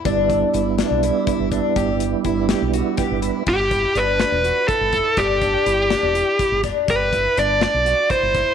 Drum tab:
CC |-------|-------|x------|-------|
HH |xxxxxxx|xxxxxxx|-xxxxxx|xxxxxxx|
SD |---o---|---o-o-|---o---|---o--o|
BD |oo---oo|o-o--o-|oo---oo|oo---oo|

CC |-------|
HH |xxxxxxx|
SD |---o---|
BD |oo---oo|